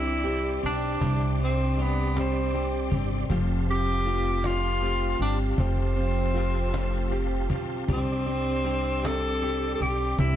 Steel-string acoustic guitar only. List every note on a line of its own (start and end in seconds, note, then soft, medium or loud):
0.00 0.62 C4 medium
0.00 1.76 D4 medium
0.00 0.24 G4 medium
0.24 2.54 G4 medium
0.63 1.80 C4 medium
1.02 3.30 C3 medium
1.77 3.37 D4 medium
2.16 2.91 C4 medium
2.55 4.09 G4 medium
2.92 3.69 C4 medium
3.31 5.56 F3 medium
3.69 4.44 C4 medium
4.06 6.33 F4 medium
4.45 5.20 C4 medium
4.83 7.11 G4 medium
5.20 5.96 C4 medium
5.57 7.88 F3 medium
5.96 6.72 C4 medium
6.35 7.96 F4 medium
6.73 7.49 C4 medium
7.11 9.42 G4 medium
7.49 8.26 C4 medium
8.27 9.05 C4 medium
8.65 10.36 D4 medium
9.05 9.80 C4 medium
9.43 10.36 G4 medium
9.80 10.36 C4 medium
10.20 10.36 C3 medium